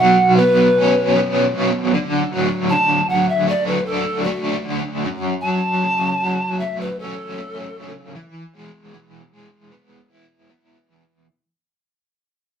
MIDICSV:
0, 0, Header, 1, 3, 480
1, 0, Start_track
1, 0, Tempo, 777202
1, 1186, Time_signature, 4, 2, 24, 8
1, 7782, End_track
2, 0, Start_track
2, 0, Title_t, "Pan flute"
2, 0, Program_c, 0, 75
2, 0, Note_on_c, 0, 78, 81
2, 221, Note_off_c, 0, 78, 0
2, 226, Note_on_c, 0, 71, 105
2, 692, Note_off_c, 0, 71, 0
2, 1664, Note_on_c, 0, 81, 90
2, 1911, Note_on_c, 0, 78, 78
2, 1920, Note_off_c, 0, 81, 0
2, 2031, Note_on_c, 0, 76, 69
2, 2040, Note_off_c, 0, 78, 0
2, 2140, Note_off_c, 0, 76, 0
2, 2155, Note_on_c, 0, 74, 81
2, 2262, Note_off_c, 0, 74, 0
2, 2270, Note_on_c, 0, 71, 74
2, 2384, Note_on_c, 0, 69, 83
2, 2394, Note_off_c, 0, 71, 0
2, 2617, Note_on_c, 0, 66, 81
2, 2627, Note_off_c, 0, 69, 0
2, 2854, Note_off_c, 0, 66, 0
2, 3342, Note_on_c, 0, 81, 99
2, 4073, Note_on_c, 0, 76, 84
2, 4082, Note_off_c, 0, 81, 0
2, 4203, Note_on_c, 0, 71, 80
2, 4212, Note_off_c, 0, 76, 0
2, 4319, Note_on_c, 0, 69, 100
2, 4329, Note_off_c, 0, 71, 0
2, 5011, Note_off_c, 0, 69, 0
2, 7782, End_track
3, 0, Start_track
3, 0, Title_t, "Overdriven electric guitar"
3, 0, Program_c, 1, 29
3, 0, Note_on_c, 1, 47, 60
3, 0, Note_on_c, 1, 54, 63
3, 241, Note_on_c, 1, 59, 58
3, 478, Note_on_c, 1, 61, 73
3, 706, Note_off_c, 1, 59, 0
3, 714, Note_on_c, 1, 59, 57
3, 947, Note_off_c, 1, 47, 0
3, 955, Note_on_c, 1, 47, 62
3, 1190, Note_off_c, 1, 47, 0
3, 1190, Note_off_c, 1, 59, 0
3, 1192, Note_off_c, 1, 61, 0
3, 1197, Note_on_c, 1, 50, 65
3, 1428, Note_off_c, 1, 54, 0
3, 1431, Note_on_c, 1, 54, 56
3, 1668, Note_off_c, 1, 50, 0
3, 1675, Note_on_c, 1, 50, 65
3, 1906, Note_off_c, 1, 54, 0
3, 1913, Note_on_c, 1, 54, 60
3, 2146, Note_on_c, 1, 57, 65
3, 2385, Note_on_c, 1, 62, 71
3, 2623, Note_off_c, 1, 57, 0
3, 2631, Note_on_c, 1, 57, 60
3, 2862, Note_off_c, 1, 50, 0
3, 2870, Note_on_c, 1, 50, 59
3, 3105, Note_off_c, 1, 62, 0
3, 3108, Note_off_c, 1, 50, 0
3, 3108, Note_off_c, 1, 57, 0
3, 3110, Note_off_c, 1, 54, 0
3, 3117, Note_on_c, 1, 42, 69
3, 3357, Note_on_c, 1, 54, 61
3, 3601, Note_on_c, 1, 49, 52
3, 3828, Note_off_c, 1, 54, 0
3, 3835, Note_on_c, 1, 54, 62
3, 4079, Note_on_c, 1, 57, 58
3, 4312, Note_off_c, 1, 42, 0
3, 4318, Note_on_c, 1, 61, 72
3, 4551, Note_off_c, 1, 57, 0
3, 4558, Note_on_c, 1, 57, 56
3, 4788, Note_off_c, 1, 49, 0
3, 4796, Note_on_c, 1, 49, 59
3, 5031, Note_off_c, 1, 49, 0
3, 5031, Note_off_c, 1, 54, 0
3, 5032, Note_off_c, 1, 57, 0
3, 5032, Note_off_c, 1, 61, 0
3, 5034, Note_on_c, 1, 52, 60
3, 5278, Note_on_c, 1, 56, 54
3, 5510, Note_off_c, 1, 52, 0
3, 5517, Note_on_c, 1, 52, 53
3, 5753, Note_off_c, 1, 56, 0
3, 5761, Note_on_c, 1, 56, 59
3, 6001, Note_on_c, 1, 59, 54
3, 6237, Note_on_c, 1, 64, 69
3, 6475, Note_off_c, 1, 59, 0
3, 6482, Note_on_c, 1, 59, 50
3, 6711, Note_off_c, 1, 52, 0
3, 6722, Note_on_c, 1, 52, 53
3, 6951, Note_off_c, 1, 64, 0
3, 6953, Note_off_c, 1, 56, 0
3, 6954, Note_off_c, 1, 52, 0
3, 6954, Note_off_c, 1, 59, 0
3, 7782, End_track
0, 0, End_of_file